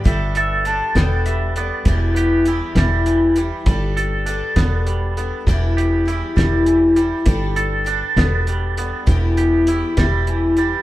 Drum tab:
HH |xxxxxx|xxxxxx|xxxxxx|xxxxxx|
SD |---o--|---o--|---o--|---o--|
BD |o--o--|o--o--|o--o--|o--o--|

HH |xxxxxx|xxxxxx|
SD |---o--|---o--|
BD |o--o--|o--o--|